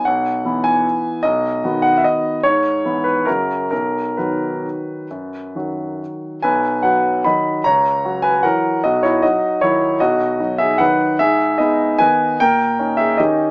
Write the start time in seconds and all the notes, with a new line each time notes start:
0.05 B1 F#5
0.45 E3 B3 E4
0.64 G#5
1.23 B1 D#5
1.64 D#3 B3 F#4
1.82 F#5
1.98 E5
2.04 D#5
2.43 G#2 C#5
2.85 E3 B3 E4
3.04 B4
3.25 F#2 C#3 F#3 F#4 A#4
3.71 B1 A#4
4.17 D#3 F#3 F#4 B4
5.11 F#2
5.55 D#3 F#3 F#4
6.42 B1 B4 G#5
6.83 F#3 F#4 B4 F#5
7.24 D#3 F#3 F#4 D#5 B5
7.64 C#2 C#5 A#5
8.05 F#3 F#4
8.22 B4 G#5
8.43 E3 F#3 F#4 A#4 F#5
8.84 B1 F#4 D#5
9.03 E4 C#5
9.22 F#3 D#4 F#4 D#5
9.61 D#3 F#3 D#4 E4 C#5
10.00 B1 F#4 D#5
10.39 F#3 D#4
10.58 G#4 E5
10.78 D#3 F#3 D#4 B4 F#5
11.19 G#2 G#4 E5
11.58 B3 D#4 G#4 D#5
11.99 D#3 B3 D#4 B4 G#5
12.40 A#2 A#4 G5
12.79 C#4 D#4
12.97 G#4 E5
13.18 D#3 C#4 D#4 G4 D#5